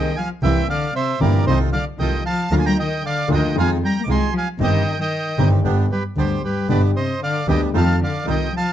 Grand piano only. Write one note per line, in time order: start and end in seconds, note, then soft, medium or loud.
0.00 0.13 C2 medium
0.00 0.13 C3 medium
0.00 0.13 D#3 soft
0.00 0.13 A#3 soft
0.00 0.13 C4 soft
0.00 0.13 G#4 soft
0.43 0.65 C2 medium
0.43 0.65 C3 medium
0.43 0.65 E3 medium
0.43 0.65 A#3 medium
0.43 0.65 C4 medium
0.43 0.65 G4 medium
1.21 1.43 G1 medium
1.21 1.43 G2 medium
1.21 1.43 E3 medium
1.21 1.43 A#3 medium
1.21 1.43 C4 medium
1.21 1.43 G4 medium
1.47 1.69 C2 medium
1.47 1.69 C3 medium
1.47 1.69 D#3 medium
1.47 1.69 A3 medium
1.47 1.69 C4 medium
1.47 1.69 F4 medium
1.99 2.21 C2 medium
1.99 2.21 C3 medium
1.99 2.21 D#3 soft
1.99 2.21 A3 soft
1.99 2.21 C4 soft
1.99 2.21 F4 medium
2.52 2.73 D2 medium
2.52 2.73 D3 loud
2.52 2.73 F3 medium
2.52 2.73 A#3 medium
2.52 2.74 F4 medium
3.28 3.51 D2 loud
3.28 3.51 D3 loud
3.28 3.51 F3 medium
3.28 3.51 A#3 medium
3.28 3.51 F4 medium
3.55 3.77 F2 medium
3.55 3.77 D#3 medium
3.55 3.77 F3 medium
3.55 3.77 G#3 medium
3.55 3.77 C4 medium
3.55 3.78 F4 medium
4.07 4.29 C2 medium
4.07 4.29 C3 medium
4.07 4.29 D#3 soft
4.07 4.29 G#3 soft
4.07 4.29 C4 soft
4.07 4.29 F4 medium
4.60 4.82 G1 medium
4.60 4.82 G2 loud
4.60 4.82 D#3 medium
4.60 4.82 G3 medium
4.60 4.82 C4 medium
4.60 4.82 G4 medium
5.38 5.60 G1 medium
5.38 5.60 G2 medium
5.38 5.60 D#3 medium
5.38 5.60 G3 medium
5.38 5.60 C4 medium
5.38 5.60 G4 medium
5.64 5.86 G1 medium
5.64 5.86 G2 medium
5.64 5.86 D3 medium
5.64 5.86 G3 medium
5.64 5.86 B3 medium
5.64 5.86 G4 medium
6.16 6.39 D2 medium
6.16 6.39 D3 medium
6.16 6.39 G3 soft
6.16 6.39 B3 soft
6.16 6.39 G4 medium
6.69 6.91 G1 medium
6.69 6.91 G2 medium
6.69 6.91 D3 medium
6.69 6.91 G3 medium
6.69 6.91 B3 medium
6.69 6.91 G4 medium
7.48 7.70 D2 medium
7.48 7.70 D3 medium
7.48 7.70 G3 medium
7.48 7.70 B3 medium
7.48 7.70 G4 medium
7.74 7.96 F2 medium
7.74 7.96 D#3 medium
7.74 7.96 F3 medium
7.74 7.96 A3 medium
7.74 7.96 C4 medium
7.74 7.96 F4 medium
8.25 8.48 C2 medium
8.25 8.48 C3 medium
8.25 8.48 D#3 soft
8.25 8.48 A3 soft
8.25 8.48 C4 soft
8.25 8.48 F4 medium